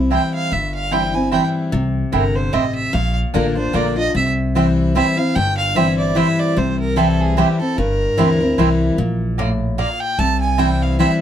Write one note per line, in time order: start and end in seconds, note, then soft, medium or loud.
0.00 0.16 C2 medium
0.00 0.11 C4 medium
0.00 0.11 E4 medium
0.10 0.50 E3 medium
0.10 0.50 G3 medium
0.10 0.21 C4 medium
0.10 0.50 C4 medium
0.10 0.21 E4 medium
0.10 0.50 E4 medium
0.10 0.21 C5 medium
0.10 0.22 G5 medium
0.10 0.33 G5 medium
0.34 0.54 F5 medium
0.52 1.37 G1 medium
0.52 1.29 G2 medium
0.52 0.74 E5 medium
0.75 0.94 F5 medium
0.91 1.13 E3 medium
0.91 1.13 G3 medium
0.91 1.02 C4 medium
0.91 1.14 C4 medium
0.91 1.02 E4 medium
0.91 1.13 E4 medium
0.91 1.02 C5 medium
0.91 1.16 G5 medium
0.91 1.02 G5 medium
1.14 1.31 C4 soft
1.14 1.32 E4 medium
1.14 1.32 G#5 medium
1.31 1.71 E3 medium
1.31 1.71 G3 medium
1.31 1.42 C4 medium
1.31 1.71 C4 medium
1.31 1.42 E4 medium
1.31 1.72 E4 medium
1.31 1.42 C5 medium
1.31 1.42 G5 loud
1.31 1.46 G5 medium
1.72 2.01 C2 medium
1.72 2.50 C3 loud
2.12 2.48 G1 medium
2.12 2.51 D3 medium
2.12 2.23 C4 medium
2.12 2.23 E4 medium
2.12 2.37 A#4 medium
2.12 2.23 C5 medium
2.12 2.23 G5 medium
2.35 2.54 C5 medium
2.53 2.88 A1 medium
2.53 2.92 C3 medium
2.53 2.63 C4 medium
2.53 2.64 E4 medium
2.53 2.64 C5 loud
2.53 2.74 D#5 medium
2.53 2.64 G5 medium
2.75 2.94 E5 medium
2.93 3.22 A#1 loud
2.93 3.71 A#2 loud
2.93 3.15 F5 medium
3.34 3.69 A1 medium
3.34 3.55 D3 medium
3.34 3.44 A#3 medium
3.34 3.55 A#3 medium
3.34 3.56 D4 medium
3.34 3.44 F4 medium
3.34 3.54 F4 loud
3.34 3.55 A#4 medium
3.34 3.44 D5 medium
3.34 3.44 A#5 medium
3.55 3.73 D4 medium
3.55 3.73 F4 medium
3.55 3.76 C5 medium
3.73 4.09 A#1 medium
3.73 3.95 D3 medium
3.73 3.84 A#3 loud
3.73 3.95 A#3 medium
3.73 3.96 D4 medium
3.73 3.84 F4 loud
3.73 3.95 F4 medium
3.73 3.84 D5 loud
3.73 3.97 D5 medium
3.73 3.85 A#5 medium
3.96 4.15 D4 soft
3.96 4.14 F4 medium
3.96 4.14 D#5 loud
4.15 4.99 C2 medium
4.15 4.92 C3 loud
4.15 4.29 E5 loud
4.55 4.94 E3 medium
4.55 4.94 G3 medium
4.55 4.65 C4 medium
4.55 4.94 C4 medium
4.55 4.65 E4 loud
4.55 4.95 E4 medium
4.55 4.66 C5 medium
4.55 4.66 G5 loud
4.95 5.16 E3 medium
4.95 5.17 G3 medium
4.95 5.05 C4 medium
4.95 5.17 C4 medium
4.95 5.06 E4 medium
4.95 5.15 E4 medium
4.95 5.06 C5 medium
4.95 5.19 E5 medium
4.95 5.06 G5 medium
5.17 5.36 C4 soft
5.17 5.35 E4 medium
5.17 5.37 F5 loud
5.35 6.21 G1 loud
5.35 6.13 G2 loud
5.35 5.57 G5 loud
5.57 5.78 F5 loud
5.75 6.14 E3 medium
5.75 6.14 G3 medium
5.75 5.86 C4 medium
5.75 6.15 C4 medium
5.75 5.86 E4 medium
5.75 6.15 E4 loud
5.75 5.86 C5 medium
5.75 5.97 E5 medium
5.75 5.86 G5 loud
5.98 6.18 D5 medium
6.15 6.54 E3 medium
6.15 6.55 G3 medium
6.15 6.26 C4 medium
6.15 6.55 C4 medium
6.15 6.26 E4 loud
6.15 6.55 E4 medium
6.15 6.26 C5 medium
6.15 6.41 E5 medium
6.15 6.26 G5 loud
6.39 6.59 D5 medium
6.57 7.42 C2 medium
6.57 7.34 C3 medium
6.57 6.79 C5 medium
6.80 6.99 A#4 medium
6.96 7.35 E3 medium
6.96 7.35 G3 medium
6.96 7.07 C4 medium
6.96 7.36 C4 medium
6.96 7.07 E4 medium
6.96 7.36 E4 loud
6.96 7.22 A4 medium
6.96 7.07 C5 medium
6.96 7.07 G5 loud
7.20 7.39 G#4 medium
7.37 7.58 E3 medium
7.37 7.59 G3 medium
7.37 7.47 C4 medium
7.37 7.59 C4 loud
7.37 7.47 E4 medium
7.37 7.58 E4 medium
7.37 7.59 G4 medium
7.37 7.47 C5 loud
7.37 7.47 G5 loud
7.59 7.78 C4 soft
7.59 7.77 E4 medium
7.59 7.79 A4 medium
7.78 8.06 G1 medium
7.78 8.55 G2 medium
7.78 8.98 A#4 medium
8.17 8.52 D2 medium
8.17 8.39 E3 loud
8.17 8.39 G3 medium
8.17 8.28 C4 medium
8.17 8.39 C4 loud
8.17 8.28 E4 medium
8.17 8.39 E4 loud
8.17 8.28 C5 medium
8.17 8.28 G5 medium
8.40 8.58 C4 medium
8.40 8.58 E4 medium
8.58 8.92 C2 medium
8.58 8.97 E3 medium
8.58 8.97 G3 medium
8.58 8.68 C4 medium
8.58 8.97 C4 medium
8.58 8.68 E4 medium
8.58 8.97 E4 medium
8.58 8.68 C5 loud
8.58 8.68 G5 medium
8.98 9.83 A#1 medium
8.98 9.75 A#2 medium
9.38 9.77 A2 medium
9.38 9.48 A#3 medium
9.38 9.48 F4 medium
9.38 9.49 D5 medium
9.38 9.49 A#5 medium
9.78 10.17 A#2 medium
9.78 9.88 A#3 medium
9.78 9.89 F4 medium
9.78 9.89 D5 loud
9.78 10.01 F5 medium
9.78 9.89 A#5 loud
10.00 10.20 G5 loud
10.19 11.03 C2 medium
10.19 10.96 C3 loud
10.19 10.40 A5 loud
10.40 10.60 G#5 loud
10.58 10.97 E3 medium
10.58 10.98 G3 medium
10.58 10.68 C4 medium
10.58 10.98 C4 loud
10.58 10.69 E4 medium
10.58 10.98 E4 medium
10.58 10.69 C5 loud
10.58 10.69 G5 loud
10.58 10.83 G5 medium
10.81 10.98 F5 medium
10.99 11.20 E3 medium
10.99 11.21 G3 medium
10.99 11.09 C4 medium
10.99 11.21 C4 loud
10.99 11.10 E4 medium
10.99 11.21 E4 medium
10.99 11.10 C5 medium
10.99 11.12 E5 medium
10.99 11.10 G5 loud